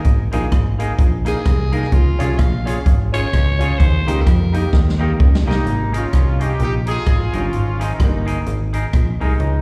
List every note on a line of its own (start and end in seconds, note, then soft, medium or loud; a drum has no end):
0.04 0.29 G#1 medium
0.04 kick loud
0.04 closed hi-hat medium
0.32 0.50 A#1 loud
0.32 0.45 A#3 loud
0.32 0.43 D#4 medium
0.32 0.45 D#4 loud
0.32 0.43 G#4 medium
0.32 0.46 G#4 loud
0.32 0.44 A#4 medium
0.32 0.44 D#5 medium
0.32 closed hi-hat medium
0.51 0.92 G#1 medium
0.51 muted clean electric guitar stroke soft
0.51 kick medium
0.51 cross-stick loud
0.51 closed hi-hat medium
0.78 0.91 A#3 medium
0.78 0.90 D#4 medium
0.78 0.92 D#4 medium
0.78 0.90 G#4 medium
0.78 0.92 G#4 loud
0.78 0.91 A#4 medium
0.78 0.91 D#5 medium
0.78 closed hi-hat medium
0.99 1.39 A#1 loud
0.99 kick loud
0.99 closed hi-hat medium
1.25 1.38 A#3 medium
1.25 1.36 D#4 medium
1.25 1.38 D#4 medium
1.25 1.37 G#4 medium
1.25 1.39 G#4 medium
1.25 1.94 G#4 medium
1.25 1.37 A#4 medium
1.25 1.37 D#5 medium
1.25 closed hi-hat medium
1.46 1.86 C2 medium
1.46 muted clean electric guitar stroke soft
1.46 kick loud
1.46 cross-stick loud
1.46 closed hi-hat medium
1.72 1.85 A#3 medium
1.72 1.83 D#4 loud
1.72 1.85 D#4 medium
1.72 1.83 G#4 medium
1.72 1.86 G#4 loud
1.72 1.84 A#4 loud
1.72 1.84 D#5 loud
1.72 closed hi-hat medium
1.83 cross-stick medium
1.92 2.16 C#2 medium
1.92 2.41 F4 loud
1.92 kick loud
1.92 closed hi-hat medium
2.18 2.37 C2 medium
2.18 2.30 C#4 medium
2.18 2.32 C#4 loud
2.18 2.30 F4 loud
2.18 2.32 F4 medium
2.18 2.30 G#4 medium
2.18 2.32 G#4 loud
2.18 2.31 C#5 loud
2.18 closed hi-hat medium
2.38 2.79 A#1 loud
2.38 2.86 F5 medium
2.38 muted clean electric guitar stroke soft
2.38 kick loud
2.38 cross-stick loud
2.38 closed hi-hat medium
2.65 2.77 C#4 medium
2.65 2.79 C#4 medium
2.65 2.77 F4 medium
2.65 2.79 F4 medium
2.65 2.77 G#4 medium
2.65 2.79 G#4 loud
2.65 2.78 C#5 loud
2.65 closed hi-hat medium
2.86 3.26 G#1 loud
2.86 kick loud
2.86 closed hi-hat medium
3.12 3.25 C#4 medium
3.12 3.24 C#4 medium
3.12 3.26 F4 medium
3.12 3.24 F4 medium
3.12 3.26 G#4 loud
3.12 3.24 G#4 medium
3.12 3.80 C#5 loud
3.12 3.25 C#5 medium
3.12 closed hi-hat medium
3.33 3.73 C#2 loud
3.33 muted clean electric guitar stroke medium
3.33 kick loud
3.33 cross-stick loud
3.33 closed hi-hat medium
3.59 3.72 C#4 loud
3.59 3.71 C#4 medium
3.59 3.72 F4 medium
3.59 3.71 F4 medium
3.59 3.73 G#4 loud
3.59 3.71 G#4 loud
3.59 3.72 C#5 loud
3.59 closed hi-hat medium
3.78 4.03 D#2 loud
3.78 4.23 C5 loud
3.78 kick loud
3.78 closed hi-hat medium
4.06 4.24 C#2 medium
4.06 4.19 A#3 loud
4.06 4.19 D#4 loud
4.06 4.17 D#4 medium
4.06 4.19 G4 loud
4.06 4.18 G4 medium
4.06 4.18 A#4 medium
4.06 4.18 D#5 medium
4.06 closed hi-hat loud
4.21 4.27 A4 medium
4.25 4.66 F2 medium
4.25 4.73 A#4 medium
4.25 muted clean electric guitar stroke soft
4.25 kick loud
4.25 cross-stick loud
4.25 closed hi-hat medium
4.53 4.66 A#3 loud
4.53 4.64 D#4 medium
4.53 4.66 D#4 medium
4.53 4.64 G4 medium
4.53 4.67 G4 loud
4.53 4.64 A#4 medium
4.53 4.65 D#5 medium
4.53 closed hi-hat medium
4.73 5.13 D#2 loud
4.73 kick loud
4.73 snare medium
4.89 snare medium
4.99 5.12 A#3 medium
4.99 5.10 D#4 medium
4.99 5.13 D#4 medium
4.99 5.10 G4 loud
4.99 5.13 G4 loud
4.99 5.11 A#4 loud
4.99 5.11 D#5 loud
5.19 5.43 C#2 medium
5.19 muted clean electric guitar stroke soft
5.19 kick loud
5.35 snare medium
5.46 5.64 C2 medium
5.46 5.59 A#3 medium
5.46 5.92 A#3 medium
5.46 5.57 D#4 medium
5.46 5.60 D#4 medium
5.46 5.92 D#4 medium
5.46 5.58 G4 loud
5.46 5.60 G4 loud
5.46 5.58 A#4 loud
5.46 5.58 D#5 loud
5.51 snare medium
5.66 6.06 G#1 medium
5.66 closed hi-hat medium
5.92 6.41 C#4 medium
5.92 6.04 D#4 medium
5.92 6.41 F4 loud
5.92 6.04 G#4 medium
5.92 6.04 A#4 loud
5.92 6.04 D#5 loud
5.92 closed hi-hat medium
6.13 6.53 C2 medium
6.13 kick medium
6.13 cross-stick loud
6.13 closed hi-hat medium
6.40 6.51 D#4 medium
6.40 6.61 D#4 medium
6.40 6.60 G4 medium
6.40 6.51 G#4 medium
6.40 6.51 A#4 medium
6.40 6.51 D#5 medium
6.40 closed hi-hat medium
6.59 7.00 A#1 loud
6.59 6.74 D#4 medium
6.59 6.73 G4 loud
6.59 closed hi-hat medium
6.86 6.97 D#4 medium
6.86 7.32 F4 medium
6.86 6.98 G#4 medium
6.86 7.31 G#4 loud
6.86 6.98 A#4 medium
6.86 6.98 D#5 loud
6.86 closed hi-hat loud
7.06 7.30 G#1 medium
7.06 kick loud
7.06 cross-stick loud
7.06 closed hi-hat medium
7.33 7.51 G1 medium
7.33 7.82 C#4 medium
7.33 7.44 D#4 medium
7.33 7.81 F4 loud
7.33 7.44 G#4 loud
7.33 7.44 A#4 medium
7.33 7.45 D#5 medium
7.33 closed hi-hat medium
7.53 7.93 G#1 medium
7.53 closed hi-hat medium
7.79 8.01 C4 medium
7.79 7.90 D#4 medium
7.79 8.00 D#4 medium
7.79 7.91 G#4 medium
7.79 7.91 A#4 medium
7.79 7.91 D#5 medium
7.79 cross-stick medium
7.79 closed hi-hat loud
8.00 8.40 G1 medium
8.00 8.44 A#3 medium
8.00 8.44 D#4 medium
8.00 kick loud
8.00 cross-stick loud
8.00 closed hi-hat medium
8.25 8.37 D#4 medium
8.25 8.37 G#4 medium
8.25 8.38 A#4 medium
8.25 8.38 D#5 loud
8.25 closed hi-hat medium
8.46 8.86 G#1 loud
8.46 closed hi-hat medium
8.73 8.84 D#4 medium
8.73 8.84 G#4 medium
8.73 8.85 A#4 loud
8.73 8.85 D#5 loud
8.73 closed hi-hat medium
8.93 9.17 A#1 medium
8.93 muted clean electric guitar stroke soft
8.93 kick loud
8.93 cross-stick loud
8.93 closed hi-hat medium
9.20 9.37 C2 medium
9.20 9.62 G#3 medium
9.20 9.31 D#4 medium
9.20 9.62 D#4 medium
9.20 9.31 G#4 loud
9.20 9.32 A#4 loud
9.20 9.32 D#5 medium
9.20 open hi-hat soft
9.40 9.62 C#2 loud
9.40 closed hi-hat medium